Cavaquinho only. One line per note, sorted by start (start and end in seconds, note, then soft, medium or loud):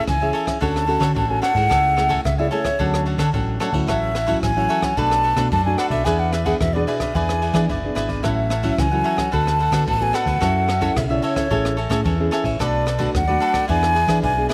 0.21 0.32 C#5 soft
0.21 0.33 E5 soft
0.21 0.34 G#5 soft
0.33 0.46 A4 medium
0.33 0.46 C#5 medium
0.33 0.46 E5 medium
0.33 0.44 G#5 medium
0.46 0.60 C#5 soft
0.46 0.60 E5 soft
0.46 0.59 G#5 soft
0.61 0.86 D4 medium
0.61 0.86 A4 medium
0.61 0.87 C#5 medium
0.61 0.87 F#5 medium
0.87 0.99 D4 soft
0.87 0.99 A4 soft
0.87 0.99 C#5 soft
0.87 1.00 F#5 soft
1.00 1.10 D4 medium
1.00 1.11 A4 medium
1.00 1.11 C#5 medium
1.00 1.11 F#5 medium
1.14 1.40 D4 soft
1.14 1.41 A4 soft
1.14 1.42 C#5 soft
1.14 1.42 F#5 soft
1.42 1.55 D4 medium
1.42 1.55 A4 medium
1.42 1.54 C#5 medium
1.42 1.54 F#5 medium
1.55 1.68 A4 soft
1.55 1.69 C#5 soft
1.55 1.69 F#5 soft
1.70 1.95 A4 medium
1.70 1.95 C#5 medium
1.70 1.96 E5 medium
1.70 1.97 G#5 medium
1.96 2.08 A4 soft
1.96 2.09 C#5 soft
1.96 2.09 E5 soft
1.96 2.09 G#5 soft
2.09 2.19 A4 medium
2.09 2.20 C#5 medium
2.09 2.20 E5 medium
2.09 2.20 G#5 medium
2.38 2.50 C#5 soft
2.38 2.51 E5 soft
2.38 2.51 G#5 soft
2.51 2.64 A4 medium
2.51 2.64 C#5 medium
2.51 2.64 E5 medium
2.51 2.63 G#5 medium
2.64 2.78 C#5 soft
2.64 2.78 E5 soft
2.64 2.77 G#5 soft
2.79 3.04 D4 medium
2.79 3.05 A4 medium
2.79 3.05 C#5 medium
2.79 3.06 F#5 medium
3.06 3.17 D4 soft
3.06 3.18 A4 soft
3.06 3.18 C#5 soft
3.06 3.19 F#5 soft
3.18 3.28 D4 medium
3.18 3.29 A4 medium
3.18 3.29 C#5 medium
3.18 3.29 F#5 medium
3.33 3.59 D4 soft
3.33 3.59 A4 soft
3.33 3.60 C#5 soft
3.33 3.60 F#5 soft
3.60 3.73 D4 medium
3.60 3.73 A4 medium
3.60 3.72 C#5 medium
3.60 3.71 F#5 medium
3.73 3.87 A4 soft
3.73 3.87 C#5 soft
3.73 3.86 F#5 soft
3.87 4.13 E4 medium
3.87 4.14 A4 medium
3.87 4.14 C#5 medium
3.87 4.15 F#5 medium
4.14 4.25 E4 soft
4.14 4.26 A4 soft
4.14 4.26 C#5 soft
4.14 4.27 F#5 soft
4.27 4.37 E4 medium
4.27 4.37 A4 medium
4.27 4.37 C#5 medium
4.27 4.38 F#5 medium
4.57 4.68 A4 soft
4.57 4.69 C#5 soft
4.57 4.69 F#5 soft
4.69 4.82 E4 medium
4.69 4.82 A4 medium
4.69 4.82 C#5 medium
4.69 4.81 F#5 medium
4.82 4.96 A4 soft
4.82 4.96 C#5 soft
4.82 4.95 F#5 soft
4.97 5.22 D4 medium
4.97 5.23 A4 medium
4.97 5.23 B4 medium
4.97 5.23 D5 medium
5.23 5.36 D4 soft
5.23 5.36 A4 soft
5.23 5.36 B4 soft
5.23 5.37 D5 soft
5.37 5.46 D4 medium
5.37 5.46 A4 medium
5.37 5.47 B4 medium
5.37 5.47 D5 medium
5.52 5.77 D4 soft
5.52 5.78 A4 soft
5.52 5.78 B4 soft
5.52 5.79 D5 soft
5.78 5.91 D4 medium
5.78 5.91 A4 medium
5.78 5.90 B4 medium
5.78 5.90 D5 medium
5.91 6.05 A4 soft
5.91 6.04 B4 soft
5.91 6.04 D5 soft
6.05 6.31 E4 medium
6.05 6.32 G#4 medium
6.05 6.32 B4 medium
6.05 6.33 D5 medium
6.32 6.44 E4 soft
6.32 6.45 G#4 soft
6.32 6.45 B4 soft
6.32 6.45 D5 soft
6.46 6.55 E4 medium
6.46 6.56 G#4 medium
6.46 6.56 B4 medium
6.46 6.56 D5 medium
6.74 6.87 G#4 soft
6.74 6.87 B4 soft
6.74 6.87 D5 soft
6.87 7.00 E4 medium
6.87 7.00 G#4 medium
6.87 6.99 B4 medium
6.87 6.99 D5 medium
7.00 7.14 G#4 soft
7.00 7.14 B4 soft
7.00 7.13 D5 soft
7.15 7.40 E4 medium
7.15 7.41 G#4 medium
7.15 7.42 B4 medium
7.15 7.42 D5 medium
7.42 7.52 E4 soft
7.42 7.53 G#4 soft
7.42 7.53 B4 soft
7.42 7.54 D5 soft
7.53 7.64 E4 medium
7.53 7.64 G#4 medium
7.53 7.64 B4 medium
7.53 7.64 D5 medium
7.69 7.94 E4 soft
7.69 7.94 G#4 soft
7.69 7.95 B4 soft
7.69 7.95 D5 soft
7.95 8.08 E4 medium
7.95 8.09 G#4 medium
7.95 8.08 B4 medium
7.95 8.07 D5 medium
8.08 8.23 G#4 soft
8.08 8.22 B4 soft
8.08 8.22 D5 soft
8.23 8.49 E4 medium
8.23 8.49 A4 medium
8.23 8.50 C#5 medium
8.23 8.50 F#5 medium
8.50 8.62 E4 soft
8.50 8.62 A4 soft
8.50 8.62 C#5 soft
8.50 8.63 F#5 soft
8.63 8.73 E4 medium
8.63 8.73 A4 medium
8.63 8.73 C#5 medium
8.63 8.74 F#5 medium
8.91 9.03 A4 soft
8.91 9.04 C#5 soft
8.91 9.04 F#5 soft
9.04 9.17 E4 medium
9.04 9.17 A4 medium
9.04 9.17 C#5 medium
9.04 9.15 F#5 medium
9.17 9.31 A4 soft
9.17 9.31 C#5 soft
9.17 9.30 F#5 soft
9.32 9.58 D4 medium
9.32 9.58 A4 medium
9.32 9.59 B4 medium
9.32 9.59 F#5 medium
9.59 9.71 D4 soft
9.59 9.71 A4 soft
9.59 9.72 B4 soft
9.59 9.72 F#5 soft
9.72 9.82 D4 medium
9.72 9.82 A4 medium
9.72 9.82 B4 medium
9.72 9.83 F#5 medium
9.87 10.12 D4 soft
9.87 10.12 A4 soft
9.87 10.13 B4 soft
9.87 10.14 F#5 soft
10.13 10.26 D4 medium
10.13 10.27 A4 medium
10.13 10.26 B4 medium
10.13 10.25 F#5 medium
10.27 10.40 A4 soft
10.27 10.40 B4 soft
10.27 10.40 F#5 soft
10.41 10.66 F#4 medium
10.41 10.67 A4 medium
10.41 10.68 C#5 medium
10.41 10.68 E5 medium
10.68 10.80 F#4 soft
10.68 10.80 A4 soft
10.68 10.81 C#5 soft
10.68 10.81 E5 soft
10.81 10.91 F#4 medium
10.81 10.91 A4 medium
10.81 10.91 C#5 medium
10.81 10.91 E5 medium
11.10 11.22 A4 soft
11.10 11.22 C#5 soft
11.10 11.23 E5 soft
11.22 11.35 F#4 medium
11.22 11.36 A4 medium
11.22 11.35 C#5 medium
11.22 11.34 E5 medium
11.36 11.49 A4 soft
11.36 11.49 C#5 soft
11.36 11.49 E5 soft
11.50 11.75 A4 medium
11.50 11.76 C#5 medium
11.50 11.76 E5 medium
11.50 11.77 G#5 medium
11.77 11.88 A4 soft
11.77 11.89 C#5 soft
11.77 11.89 E5 soft
11.77 11.90 G#5 soft
11.89 12.00 A4 medium
11.89 12.00 C#5 medium
11.89 12.00 E5 medium
11.89 12.00 G#5 medium
12.04 12.30 A4 soft
12.04 12.31 C#5 soft
12.04 12.31 E5 soft
12.04 12.32 G#5 medium
12.31 12.44 A4 medium
12.31 12.44 C#5 medium
12.31 12.44 E5 medium
12.31 12.43 G#5 medium
12.44 12.58 C#5 soft
12.44 12.58 E5 soft
12.44 12.58 G#5 soft
12.59 12.85 D4 medium
12.59 12.85 A4 medium
12.59 12.85 B4 medium
12.59 12.86 D5 medium
12.86 12.97 D4 soft
12.86 12.97 A4 soft
12.86 12.98 B4 soft
12.86 12.98 D5 soft
12.98 13.09 D4 medium
12.98 13.09 A4 medium
12.98 13.09 B4 medium
12.98 13.09 D5 medium
13.27 13.40 A4 soft
13.27 13.41 B4 soft
13.27 13.40 D5 soft
13.40 13.53 D4 medium
13.40 13.54 A4 medium
13.40 13.53 B4 medium
13.40 13.52 D5 medium
13.53 13.68 A4 soft
13.53 13.67 B4 soft
13.53 13.67 D5 soft
13.68 13.93 E4 medium
13.68 13.94 G#4 medium
13.68 13.94 B4 medium
13.68 13.95 D5 medium
13.95 14.06 E4 soft
13.95 14.07 G#4 soft
13.95 14.07 B4 soft
13.95 14.08 D5 soft
14.08 14.18 E4 medium
14.08 14.18 G#4 medium
14.08 14.18 B4 medium
14.08 14.18 D5 medium
14.22 14.48 E4 soft
14.22 14.48 G#4 soft
14.22 14.49 B4 soft
14.22 14.49 D5 soft
14.49 14.54 E4 medium
14.49 14.54 G#4 medium
14.49 14.54 B4 medium
14.49 14.54 D5 medium